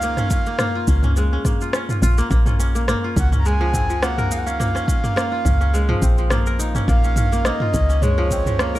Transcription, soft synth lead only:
Already playing: F5
3.19 F#5
3.39 A#5
3.46 G#5
4.03 F#5
4.31 F5
4.38 F#5
4.46 F5
6.88 F5
7.45 D#5
8.02 C#5

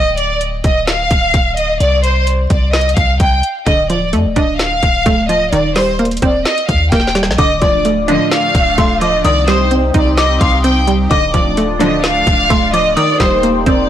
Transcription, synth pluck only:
3.67 D3
3.90 F3
4.13 A3
4.36 D4
5.06 A3
5.29 F3
5.53 D#3
5.76 G3
5.99 A#3
6.22 C4
6.92 A#3
7.15 G3
7.38 D3
7.62 F3
7.85 A3
8.08 D4
8.78 A3
9.02 F3
9.25 D#3
9.48 G3
9.71 C4
9.94 D#4
10.64 C4
10.88 G3
11.11 D3
11.34 F3
11.57 A3
11.81 D4
12.50 A3
12.73 F3
12.97 D#3
13.20 G3
13.43 A#3
13.66 C4

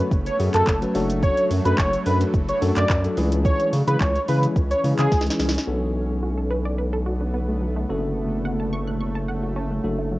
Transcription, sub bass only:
0.11 F#1
0.39 F#2
0.54 F#2
0.67 F#1
0.95 F#1
1.51 F#2
1.65 F#2
1.78 F#1
2.06 F#2
2.34 F#1
2.62 F#2
2.76 F#2
2.90 F#2
3.17 C#2
3.73 C#3
3.88 C#3
4.00 C#2
4.28 C#3
4.56 C#2
4.84 C#3
4.99 C#3
5.12 C#2
5.39 C2
5.67 B1
7.89 F#1
9.84 F#1

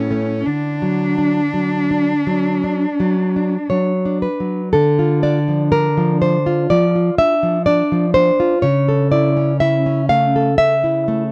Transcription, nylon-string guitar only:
Already playing: A2
0.11 A3 C#4
0.47 D3
0.82 F#3
1.18 D4
1.54 F#3
1.91 D4
2.27 F#3
2.64 D4
3.00 F#3
3.36 D4
3.70 F#3 C#5
4.05 D4
4.22 B4
4.40 F#3
4.73 D3 A4
4.99 F4
5.23 D4 D5
5.48 F3
5.72 D4 A#4
5.97 F3
6.22 D4 C5
6.46 F4
6.70 F3 D5
6.95 F4
7.18 D4 E5
7.43 F3
7.66 D4 D5
7.92 F3
8.14 D4 C5
8.40 F4
8.62 C#3 C#5
8.88 A4
9.12 E4 D5
9.37 C#4
9.60 E4 E5
9.86 C#4
10.09 A3 F5
10.36 A4
10.58 C#3 E5
10.84 E4
11.08 A3

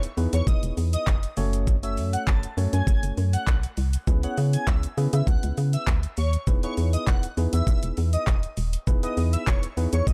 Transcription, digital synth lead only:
0.33 C#5
0.47 D#5
0.93 D#5
1.83 E5
2.13 F#5
2.27 A5
2.73 G#5
2.87 G#5
3.33 F#5
4.23 F#5
4.53 G#5
4.67 E5
5.14 E5
5.28 F#5
5.73 E5
6.18 C#5
6.63 C#5
6.93 D#5
7.07 F#5
7.53 E5
7.67 E5
8.13 D#5
9.03 D#5
9.33 E5
9.47 C#5
9.93 C#5
10.07 D#5

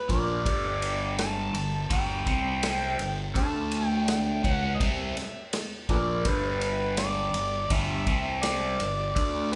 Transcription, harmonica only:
0.11 D5
1.20 A5
1.93 G5
3.38 A5
3.88 G5
4.09 G5
4.51 F#5
4.75 D#5
4.82 E5
5.91 A4 B4 D5
6.26 B4
6.62 B4
6.98 D5
7.71 E5
8.43 D5
9.16 D5
9.52 E4 G4 B4

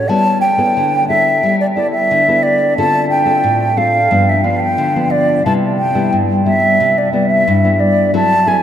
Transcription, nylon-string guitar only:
0.09 G3 B3 E4 A4
0.58 B3 E4 A4
0.77 D3
1.09 B3 E4 A4
1.43 G3
1.76 B3 E4 A4
2.11 D3
2.28 B3 E4 A4
2.78 D3 C4 F4 A4
3.25 C4 F4 A4
3.44 A2
3.77 C4 F4 A4
4.11 G2 F3 B3 D4
4.44 F3 B3 D4
4.78 D3
4.96 F3 B3 D4
5.46 C3 G3 B3 E4
5.94 G3 B3 E4
6.12 G2
6.45 G3 B3 E4
6.80 C3
7.13 G3 B3 E4
7.48 G2
7.64 G3 B3 E4
8.14 F#3 C4 E4 A4
8.46 C4 E4 A4

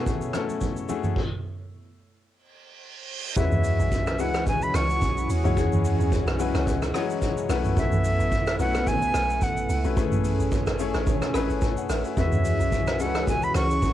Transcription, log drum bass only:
3.37 E2
3.79 B1
4.19 C#2
4.74 C#2
5.02 B1
5.29 E2
5.44 C#2
5.57 E2
5.99 E2
6.27 B1
6.54 C#2
7.49 B1
7.77 B1
8.20 A1
8.59 B1
9.14 B1
9.42 A1
9.69 C#2
9.84 B1
9.97 A1
10.39 A1
10.67 G#1
10.95 A1
11.07 G#1
11.34 A1
11.50 G#1
11.62 G#1
11.90 A1
12.17 E2
12.60 B1
13.00 C#2
13.55 C#2
13.82 B1

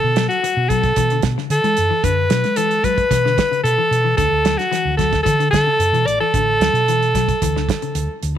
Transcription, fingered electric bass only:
0.04 B2
0.57 B2
0.97 B2
1.24 B2
1.50 D3
1.64 G#3
1.78 F#2
2.04 F#2
2.31 B2
2.45 G#3
3.11 B2
3.64 B2
3.91 B2
4.18 D2
4.31 D2
4.85 D2
5.26 D3
5.53 D3
5.79 F#2
5.93 B2
6.06 A1
6.21 muted fingered electric bass stroke
6.34 A1
6.60 D2
6.73 B2
7.42 D2
7.95 D2
8.23 D2

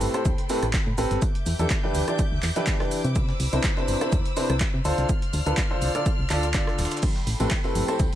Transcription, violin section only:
Already playing: A4 G5 B5 C6
1.22 E5 D6 G6
3.16 C5 B5 E6
4.85 D5 C6 F6
7.03 A4 G5 B5

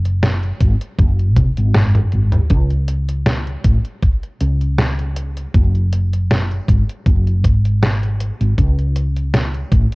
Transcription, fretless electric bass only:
Already playing: F#1
0.61 G#1
0.98 F#1
1.36 C2
1.58 G#1
2.13 G#1
2.51 C#2
3.64 A1
4.40 C#2
5.54 F#1
6.68 G#1
7.06 F#1
7.44 G#1
8.40 G#1
8.58 C#2
9.72 A1

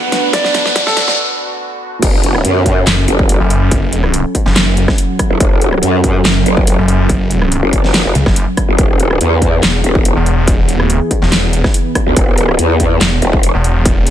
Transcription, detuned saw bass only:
2.87 F#1
3.40 F#1
4.46 F#1
6.25 F#1
6.78 F#1
8.15 C#2
8.26 F#1
9.63 E1
10.16 E1
10.74 D#1
11.22 E1
13.01 E1
13.54 E1

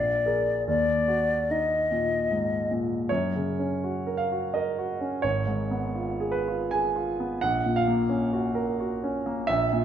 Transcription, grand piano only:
Already playing: A#1
0.26 G#4 A#4
0.68 D#2
1.08 F#4
1.50 D#4
1.91 A#2
2.31 G#2
2.71 A#2
3.09 F#2 C#5
3.36 C#3
3.59 C#4
3.84 F#4
4.07 A#4
4.17 F5
4.32 F#4
4.54 A#4 D#5
4.78 F#4
5.01 C#4
5.22 G#1 C#5
5.47 G#2
5.71 B3
5.95 F4
6.20 G#4
6.31 B4
6.48 F4
6.71 G#4 G#5
6.96 F4
7.20 B3
7.41 A#1 F#5
7.66 A#2
7.76 F5
7.88 A#3
8.09 C#4
8.33 F#4
8.55 A#4
8.80 F#4
9.03 C#4
9.26 A#3
9.47 A#1 E5
9.73 A#2

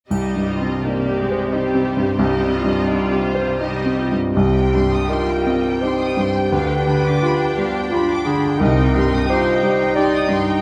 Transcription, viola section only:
0.11 G3 G4
0.48 F4
0.85 A#3 G4
1.20 G#3
1.53 G3 G4
2.20 G3 G4
2.54 F4
3.62 G3 G4
4.36 G3
6.53 D4
8.61 D#4

